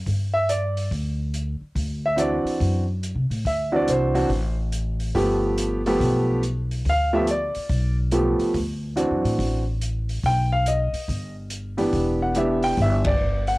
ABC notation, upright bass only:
X:1
M:4/4
L:1/8
Q:"Swing" 1/4=142
K:Dmix
V:1 name="Upright bass" clef=bass
G,,4 D,,3 z | D,,3 z F,,2- (3F,, C, A,, | D,,2 C,,2 A,,,4 | G,,,4 B,,,4 |
D,,3 z B,,,3 z | D,,2- (3D,, F,, A,, A,,,4 | B,,,3 z G,,,4 | E,,,4 G,,,2 G,,,2 |]